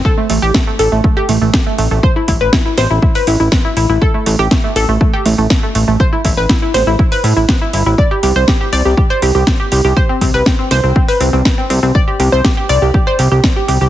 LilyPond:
<<
  \new Staff \with { instrumentName = "Synth arpeggio sound" } { \time 4/4 \key a \minor \tempo 4 = 121 a'16 a16 a16 g'16 a16 a16 a'16 a16 a16 g'16 a16 a16 r16 a16 a16 a16 | c''16 e'16 e'16 b'16 e'16 e'16 c''16 e'16 e'16 b'16 e'16 e'16 r16 e'16 e'16 e'16 | a'16 a16 a16 g'16 a16 a16 a'16 a16 a16 g'16 a16 a16 r16 a16 a16 a16 | c''16 e'16 e'16 b'16 e'16 e'16 c''16 e'16 e'16 b'16 e'16 e'16 r16 e'16 e'16 e'16 |
d''16 g'16 g'16 c''16 g'16 g'16 d''16 g'16 g'16 c''16 g'16 g'16 r16 g'16 g'16 g'16 | c''16 c'16 c'16 b'16 c'16 c'16 c''16 c'16 c'16 b'16 c'16 c'16 r16 c'16 c'16 c'16 | d''16 g'16 g'16 c''16 g'16 g'16 d''16 g'16 g'16 c''16 g'16 g'16 r16 g'16 g'16 g'16 | }
  \new Staff \with { instrumentName = "Analog synth bass" } { \clef bass \time 4/4 \key a \minor r8 a,,16 a,,16 r8 a,,16 a,,16 r8 a,,16 a,,16 r8 a,,16 a,,16 | r8 a,,16 a,,16 r8 a,,16 a,,16 r8 a,,16 a,,16 r8 a,,16 a,,16 | r8 a,,16 a,,16 r8 a,,16 a,,16 r8 a,,16 a,,16 r8 a,,16 a,,16 | r8 a,,16 a,,16 r8 a,,16 a,,16 r8 a,16 a,,16 r8 g,,16 a,,16 |
r8 c,16 c,16 r8 c,16 c,16 r8 c,16 c,16 r8 c,16 c,16 | r8 c,16 c,16 r8 c,16 c,16 r8 c,16 c,16 r8 c,16 c,16 | r8 c,16 c,16 r8 c,16 c,16 r8 c,16 c,16 r8 c,16 c,16 | }
  \new DrumStaff \with { instrumentName = "Drums" } \drummode { \time 4/4 bd8 hho8 <bd sn>8 hho8 bd8 hho8 <bd sn>8 hho8 | bd8 <hho bd>8 <bd sn>8 <hho sn>8 bd16 hho16 hho8 <bd sn>8 hho8 | bd8 hho8 <bd sn>8 hho8 bd8 hho8 <bd sn>8 hho8 | bd8 <hho bd>8 <bd sn>8 <hho sn>8 bd16 hho16 hho8 <bd sn>8 hho8 |
bd8 hho8 <bd sn>8 hho8 bd8 hho8 <bd sn>8 hho8 | bd8 <hho bd>8 <bd sn>8 <hho sn>8 bd16 hho16 hho8 <bd sn>8 hho8 | bd8 hho8 <bd sn>8 hho8 bd8 hho8 <bd sn>8 hho8 | }
>>